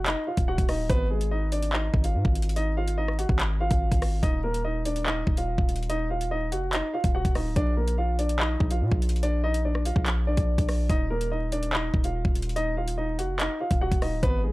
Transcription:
Already playing: 808-style bass F1
0.06 grand piano D#4 D#5, clap, closed hi-hat
0.27 grand piano F4 F5
0.37 808-style bass D#1, kick, closed hi-hat
0.48 grand piano F#4 F#5
0.58 808-style bass D#1, kick, closed hi-hat
0.69 grand piano D#4 D#5, cross-stick, open hi-hat
0.79 808-style bass D1
0.90 808-style bass G#1, grand piano B3 B4, kick, closed hi-hat
1.10 grand piano G#3 G#4
1.21 closed hi-hat
1.31 grand piano D#4 D#5
1.52 grand piano D4 D5, closed hi-hat
1.63 closed hi-hat
1.73 grand piano D#4 D#5, clap
1.94 808-style bass G#1, kick
2.04 grand piano F4 F5, closed hi-hat
2.15 808-style bass G#2
2.25 808-style bass G#1, kick
2.35 closed hi-hat
2.42 closed hi-hat
2.49 closed hi-hat
2.56 grand piano D#4 D#5, closed hi-hat
2.77 grand piano F4 F5
2.88 closed hi-hat
2.98 grand piano D#4 D#5
3.08 cross-stick
3.19 grand piano F#4 F#5, closed hi-hat
3.29 808-style bass G#1, kick
3.40 clap, closed hi-hat
3.60 grand piano F4 F5
3.71 808-style bass G#1, kick, closed hi-hat
3.92 808-style bass G#1, kick, closed hi-hat
4.02 cross-stick, open hi-hat
4.23 808-style bass D#1, grand piano D#4 D#5, kick, closed hi-hat
4.44 grand piano A#3 A#4
4.54 closed hi-hat
4.64 grand piano D#4 D#5
4.85 grand piano D4 D5, closed hi-hat
4.96 closed hi-hat
5.06 grand piano D#4 D#5, clap
5.27 808-style bass D#1, kick
5.37 grand piano F4 F5, closed hi-hat
5.58 808-style bass D#1, kick
5.69 closed hi-hat
5.76 closed hi-hat
5.83 closed hi-hat
5.90 grand piano D#4 D#5, closed hi-hat
6.10 grand piano F4 F5
6.21 closed hi-hat
6.31 grand piano D#4 D#5
6.52 808-style bass F1, grand piano F#4 F#5, closed hi-hat
6.73 grand piano D#4 D#5, clap, closed hi-hat
6.94 grand piano F4 F5
7.04 808-style bass D#1, kick, closed hi-hat
7.15 grand piano F#4 F#5
7.25 808-style bass D#1, kick, closed hi-hat
7.35 grand piano D#4 D#5, cross-stick, open hi-hat
7.46 808-style bass D1
7.56 808-style bass A#1, grand piano D4 D5, kick, closed hi-hat
7.77 grand piano A#3 A#4
7.88 closed hi-hat
7.98 grand piano F4 F5
8.19 grand piano D4 D5, closed hi-hat
8.29 closed hi-hat
8.40 grand piano D#4 D#5, clap
8.60 808-style bass A#1, kick
8.71 grand piano F4 F5, closed hi-hat
8.81 808-style bass A#2
8.92 808-style bass A#1, kick
9.02 closed hi-hat
9.09 closed hi-hat
9.16 closed hi-hat
9.23 grand piano D4 D5, closed hi-hat
9.44 grand piano D#4 D#5
9.54 closed hi-hat
9.65 grand piano D4 D5
9.75 cross-stick
9.85 grand piano F4 F5, closed hi-hat
9.96 808-style bass A#1, kick
10.06 clap, closed hi-hat
10.27 grand piano D4 D5
10.37 808-style bass A#1, kick, closed hi-hat
10.58 808-style bass A#1, kick, closed hi-hat
10.69 cross-stick, open hi-hat
10.89 808-style bass D#1, grand piano D#4 D#5, kick, closed hi-hat
11.10 grand piano A#3 A#4
11.21 closed hi-hat
11.31 grand piano D#4 D#5
11.52 grand piano D4 D5, closed hi-hat
11.63 closed hi-hat
11.73 grand piano D#4 D#5, clap
11.94 808-style bass D#1, kick
12.04 grand piano F4 F5, closed hi-hat
12.25 808-style bass D#1, kick
12.35 closed hi-hat
12.42 closed hi-hat
12.49 closed hi-hat
12.56 grand piano D#4 D#5, closed hi-hat
12.77 grand piano F4 F5
12.88 closed hi-hat
12.98 grand piano D#4 D#5
13.19 808-style bass F1, grand piano F#4 F#5, closed hi-hat
13.40 grand piano D#4 D#5, clap, closed hi-hat
13.60 grand piano F4 F5
13.71 808-style bass D#1, kick, closed hi-hat
13.81 grand piano F#4 F#5
13.92 808-style bass D#1, kick, closed hi-hat
14.02 grand piano D#4 D#5, cross-stick, open hi-hat
14.12 808-style bass D1
14.23 808-style bass G#1, grand piano B3 B4, kick, closed hi-hat
14.44 grand piano G#3 G#4

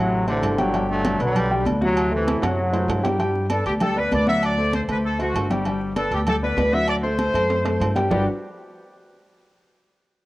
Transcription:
Already playing: upright bass A1, trombone section A2 C3 F#3, grand piano F#3 F#4 F#5
0.12 high conga
0.27 trombone section F#2 A2 D3, grand piano A3 A4 C5, high conga, low agogo
0.42 upright bass G1, high conga, low timbale, low agogo
0.58 trombone section B2 D3 F#3, grand piano G3 G4 G5, high conga, low agogo
0.74 grand piano G3 G4 G5, low agogo
0.89 trombone section D3 F#3 A3, high conga
1.05 grand piano G3 G4 G5, high conga, low agogo
1.19 upright bass B1, trombone section B2 D3 G3, grand piano B3 B4 D5, low agogo
1.36 high conga, low conga, low agogo
1.51 grand piano G3 G4 G5, high conga
1.65 upright bass D2, grand piano B3 B4 D5, high conga, low agogo
1.81 trombone section A2 C3 F#3, grand piano F#3 F#4 F#5, high conga
1.97 low agogo
2.12 trombone section A2 C3 E3, grand piano A3 A4 C5, high conga
2.28 high conga, high timbale, low agogo
2.42 upright bass F#2, trombone section A2 C3, grand piano F#3 F#4 F#5, high conga, high timbale, low agogo
2.46 trombone section F#3
2.59 high conga
2.73 grand piano A3 A4 C5, high conga, low timbale, low agogo
2.88 upright bass G2, high conga, low timbale, low agogo
3.03 grand piano G3 G4 G5, high conga, low timbale, low agogo
3.19 grand piano G3 G4 G5, low agogo
3.35 high conga
3.50 grand piano B3 B4 D5, horn section A4, high conga, low agogo
3.66 upright bass D2, horn section G4, low agogo
3.80 grand piano G3 G4 G5, horn section A4, high conga, low conga, low agogo
3.96 grand piano B3 B4 D5, horn section B4, high conga
4.12 upright bass D2, grand piano B3 B4 D5, horn section D5, high conga, low timbale, low agogo
4.27 grand piano F#3 F#4 F#5, horn section E5, high conga
4.43 horn section D5, high conga, low agogo
4.58 grand piano A3 A4 C5, high conga
4.73 horn section C5, high conga, low agogo
4.88 upright bass D2, grand piano A3 A4 C5, horn section B4, high conga, low agogo
5.04 horn section A4, high conga
5.19 grand piano A3 A4 C5, horn section F#4, high conga, low agogo
5.34 upright bass G1, high conga, low timbale, low agogo
5.50 grand piano G3 G4 G5, high conga, low agogo
5.65 grand piano G3 G4 G5, high conga, low agogo
5.81 high conga
5.96 grand piano B3 B4 D5, horn section A4, high conga, low agogo
6.11 upright bass D2, horn section G4, low agogo
6.27 grand piano G3 G4 G5, horn section A4, high conga, low conga, low agogo
6.42 grand piano B3 B4 D5, horn section B4, high conga
6.57 upright bass D2, grand piano B3 B4 D5, high conga, low timbale, low agogo
6.73 grand piano F#3 F#4 F#5, horn section E5, high conga
6.88 horn section D5, high conga, low agogo
7.03 grand piano A3 A4 C5, horn section C5, high conga
7.19 high conga, low agogo
7.33 upright bass F#2, grand piano A3 A4 C5, high conga, low agogo
7.49 high conga, high timbale
7.65 grand piano A3 A4 C5, high conga, high timbale, low agogo
7.80 upright bass G2, high conga, low timbale, low agogo
7.95 grand piano G3 G4 G5, high conga, low timbale, low agogo
8.10 upright bass G1, grand piano G3 D4 F#4 G4 B4 D5, horn section G4, low conga, low timbale

